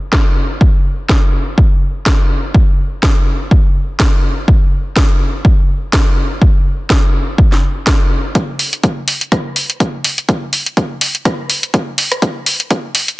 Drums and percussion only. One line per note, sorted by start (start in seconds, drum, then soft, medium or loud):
0.13 kick medium
0.13 snare loud
0.61 kick loud
1.09 kick medium
1.09 snare loud
1.58 kick loud
2.06 kick loud
2.06 snare loud
2.54 kick loud
3.03 kick medium
3.03 snare loud
3.51 kick loud
4.00 kick medium
4.00 snare loud
4.48 kick loud
4.96 kick medium
4.96 snare loud
5.45 kick loud
5.93 kick medium
5.93 snare loud
6.42 kick loud
6.90 kick medium
6.90 snare loud
7.38 kick loud
7.52 snare soft
7.87 kick medium
7.87 snare loud
8.35 kick loud
8.35 closed hi-hat soft
8.59 open hi-hat medium
8.73 closed hi-hat medium
8.83 kick medium
8.83 closed hi-hat medium
9.08 open hi-hat loud
9.21 closed hi-hat medium
9.32 kick loud
9.32 cross-stick medium
9.32 closed hi-hat medium
9.56 open hi-hat medium
9.70 closed hi-hat medium
9.80 kick loud
9.80 closed hi-hat medium
10.04 open hi-hat loud
10.18 closed hi-hat medium
10.29 kick loud
10.29 closed hi-hat medium
10.53 open hi-hat loud
10.66 closed hi-hat medium
10.77 kick loud
10.77 closed hi-hat soft
11.01 open hi-hat loud
11.15 closed hi-hat medium
11.25 kick loud
11.25 cross-stick medium
11.25 closed hi-hat soft
11.50 open hi-hat loud
11.63 closed hi-hat medium
11.74 kick loud
11.74 closed hi-hat medium
11.98 open hi-hat loud
12.12 cross-stick medium
12.12 closed hi-hat medium
12.22 kick loud
12.22 closed hi-hat medium
12.46 open hi-hat loud
12.60 closed hi-hat medium
12.71 kick loud
12.71 closed hi-hat medium
12.95 open hi-hat loud
13.08 closed hi-hat medium